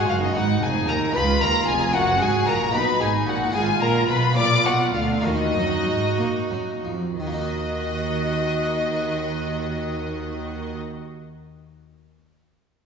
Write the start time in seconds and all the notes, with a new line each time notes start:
Already playing: D#4 F#4 G#5
0.07 F#1 F#2 F4 F5
0.20 D#4 D#5
0.31 G#1 G#3 B3 D#4 F#4
0.36 G#2 D#4 F#5
0.61 F1 F2 G#4 G#5
0.88 D#2 A#4 A#5
1.11 G#3 C#4 F4 B4 B5
1.15 C#2 F4 B5
1.41 D#2 A#4 A#5
1.68 F1 F2 G#4 G#5
1.89 A#3 C#4 F#4
1.94 F#1 F#2 F#4 F#5
2.20 G#1 G#2 G#4 G#5
2.47 A#1 A#2 A#4 A#5
2.70 B1 A#3 D#4 F#4 B4
2.74 B2 D#4 B5
2.99 G#1 G#2 G#4 G#5
3.26 A#1 A#2 F#4 F#5
3.49 B3 F4 G#4
3.54 G#1 G#2 F4 G#4 G#5
3.81 A#1 A#2 A#4 A#5
4.09 B1 B2 B4 B5
4.31 A#3 F4 G#4
4.36 A#1 A#2 F4 D5 D6
4.65 B1 B2 F#4 F#5
4.94 D2 D3 F4 F5
5.20 D#2 D#3 A#3 D#4 F#4
5.24 D#3 D#4 F#4 D#5
5.55 F#2 F#3
5.85 G#2 G#3
6.18 A#2 A#3
6.50 F#2 F#3
6.84 F2 F3
7.19 D#2 D#3 F#4 D#5
7.27 A#3
7.34 D#4
7.41 F#4
7.48 D#5